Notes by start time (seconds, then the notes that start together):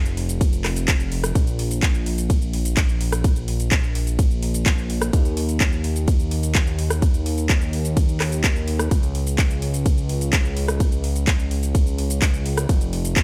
Already playing: F1
0.06 closed hi-hat, shaker
0.17 open hi-hat
0.29 closed hi-hat, shaker
0.41 kick, closed hi-hat, ride, shaker
0.53 closed hi-hat, shaker
0.65 cross-stick, clap, open hi-hat
0.76 closed hi-hat, shaker
0.88 kick, clap, closed hi-hat, ride, shaker
1.00 closed hi-hat, shaker
1.12 open hi-hat
1.24 cross-stick, closed hi-hat, shaker
1.35 A#1, kick, closed hi-hat, ride, shaker
1.47 closed hi-hat, shaker
1.59 open hi-hat
1.71 closed hi-hat, shaker
1.83 kick, clap, closed hi-hat, ride, shaker
1.95 shaker
2.06 open hi-hat
2.18 closed hi-hat, shaker
2.30 kick, closed hi-hat, ride, shaker
2.42 shaker
2.53 open hi-hat
2.65 closed hi-hat, shaker
2.77 kick, clap, closed hi-hat, ride, shaker
2.89 shaker
3.01 open hi-hat
3.12 cross-stick, closed hi-hat, shaker
3.24 kick, closed hi-hat, ride, shaker
3.36 closed hi-hat, shaker
3.48 open hi-hat
3.60 closed hi-hat, shaker
3.72 kick, clap, closed hi-hat, ride, shaker
3.83 shaker
3.95 open hi-hat
4.07 closed hi-hat, shaker
4.19 kick, closed hi-hat, ride, shaker
4.31 shaker
4.43 open hi-hat
4.54 closed hi-hat, shaker
4.66 kick, clap, closed hi-hat, ride, shaker
4.78 shaker
4.90 open hi-hat
5.02 cross-stick, closed hi-hat, shaker
5.13 D#2, kick, closed hi-hat, ride, shaker
5.25 closed hi-hat, shaker
5.37 open hi-hat
5.49 closed hi-hat, shaker
5.61 kick, clap, closed hi-hat, ride, shaker
5.72 shaker
5.84 open hi-hat
5.96 closed hi-hat, shaker
6.08 kick, closed hi-hat, ride, shaker
6.20 shaker
6.31 open hi-hat
6.43 closed hi-hat, shaker
6.55 kick, clap, closed hi-hat, ride, shaker
6.67 shaker
6.79 open hi-hat
6.90 cross-stick, closed hi-hat, shaker
7.02 kick, closed hi-hat, ride, shaker
7.14 closed hi-hat, shaker
7.26 open hi-hat
7.38 closed hi-hat, shaker
7.50 kick, clap, closed hi-hat, ride, shaker
7.61 closed hi-hat, shaker
7.73 open hi-hat
7.85 closed hi-hat, shaker
7.97 kick, closed hi-hat, ride, shaker
8.09 shaker
8.20 cross-stick, clap, open hi-hat
8.32 closed hi-hat, shaker
8.44 kick, clap, closed hi-hat, ride, shaker
8.56 shaker
8.68 open hi-hat
8.79 cross-stick, closed hi-hat, shaker
8.91 C#2, kick, closed hi-hat, ride, shaker
9.03 closed hi-hat, shaker
9.15 open hi-hat
9.27 closed hi-hat, shaker
9.38 kick, clap, closed hi-hat, ride, shaker
9.50 shaker
9.62 open hi-hat
9.74 closed hi-hat, shaker
9.86 kick, closed hi-hat, ride, shaker
9.98 shaker
10.09 open hi-hat
10.21 closed hi-hat, shaker
10.33 kick, clap, closed hi-hat, ride, shaker
10.45 shaker
10.57 open hi-hat
10.68 cross-stick, closed hi-hat, shaker
10.80 kick, closed hi-hat, ride, shaker
10.92 closed hi-hat, shaker
11.04 open hi-hat
11.16 closed hi-hat, shaker
11.27 kick, clap, closed hi-hat, ride, shaker
11.39 shaker
11.51 open hi-hat
11.63 closed hi-hat, shaker
11.75 kick, closed hi-hat, ride, shaker
11.87 shaker
11.98 open hi-hat
12.10 closed hi-hat, shaker
12.22 kick, clap, closed hi-hat, ride, shaker
12.34 shaker
12.46 open hi-hat
12.58 cross-stick, closed hi-hat, shaker
12.69 F1, kick, closed hi-hat, ride, shaker
12.81 closed hi-hat, shaker
12.93 open hi-hat
13.05 closed hi-hat, shaker
13.16 kick, clap, closed hi-hat, ride, shaker